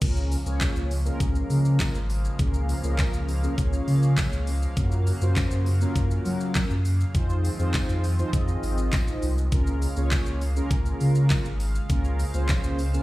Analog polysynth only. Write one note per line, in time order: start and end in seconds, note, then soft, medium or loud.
0.01 0.36 A#3 medium
0.01 0.36 C#4 medium
0.01 0.36 F4 medium
0.01 0.36 G#4 medium
0.01 0.36 A#4 loud
0.46 0.92 A#3 medium
0.46 0.92 C#4 medium
0.46 0.92 F4 medium
0.46 0.92 G#4 medium
0.46 0.92 C#5 loud
1.05 1.98 A#3 medium
1.05 1.98 C#4 medium
1.05 1.98 F4 medium
1.05 1.98 G#4 medium
1.05 1.98 A#4 loud
2.39 2.74 A#3 medium
2.39 2.74 C#4 medium
2.39 2.74 F4 medium
2.39 2.74 G#4 medium
2.39 2.74 A#4 loud
2.83 3.30 A#3 medium
2.83 3.30 C#4 medium
2.83 3.30 F4 medium
2.83 3.30 G#4 medium
2.83 3.30 A#4 loud
3.43 3.55 A#3 medium
3.43 3.55 C#4 medium
3.43 3.55 F4 medium
3.43 3.55 G#4 medium
3.43 3.55 A#4 loud
3.57 4.50 A#3 medium
3.57 4.50 C#4 medium
3.57 4.50 F4 medium
3.57 4.50 G#4 medium
3.57 4.50 C#5 loud
4.77 5.11 A#3 medium
4.77 5.11 C#4 medium
4.77 5.11 F4 medium
4.77 5.12 F#4 medium
4.77 5.12 A#4 loud
5.21 5.68 A#3 loud
5.21 5.68 C#4 medium
5.21 5.68 F4 medium
5.21 5.68 F#4 medium
5.21 5.68 C5 loud
5.81 6.73 A#3 medium
5.81 6.73 C#4 medium
5.81 6.73 F4 medium
5.81 6.73 F#4 medium
5.81 6.73 A#4 loud
7.14 7.49 C4 medium
7.14 7.49 D#4 medium
7.14 7.49 F4 medium
7.14 7.49 G#4 medium
7.14 7.49 C5 loud
7.59 8.05 C4 medium
7.59 8.05 D#4 medium
7.59 8.05 F4 medium
7.59 8.05 G#4 medium
7.59 8.05 C5 loud
8.18 8.30 C4 medium
8.18 8.30 D#4 medium
8.18 8.30 F4 medium
8.18 8.30 G#4 medium
8.18 8.30 C5 loud
8.33 9.26 C4 medium
8.33 9.26 D#4 medium
8.33 9.26 F4 medium
8.33 9.26 G#4 medium
8.33 9.26 D#5 medium
9.52 9.87 A#3 medium
9.52 9.87 C#4 medium
9.52 9.87 F4 medium
9.52 9.87 G#4 medium
9.52 9.87 A#4 loud
9.96 10.43 A#3 medium
9.96 10.43 C#4 medium
9.96 10.43 F4 medium
9.96 10.43 G#4 medium
9.96 10.43 C#5 loud
10.56 11.48 A#3 medium
10.56 11.48 C#4 medium
10.56 11.48 F4 medium
10.56 11.48 G#4 medium
10.56 11.48 A#4 loud
11.89 12.24 A#3 medium
11.89 12.24 C#4 medium
11.89 12.24 F4 medium
11.89 12.24 G#4 medium
11.89 12.24 A#4 loud
12.34 12.80 A#3 medium
12.34 12.80 C#4 medium
12.34 12.81 F4 medium
12.34 12.81 G#4 medium
12.34 12.81 C5 loud
12.93 13.03 A#3 medium
12.93 13.03 C#4 medium
12.93 13.03 F4 medium
12.93 13.03 G#4 medium
12.93 13.03 A#4 loud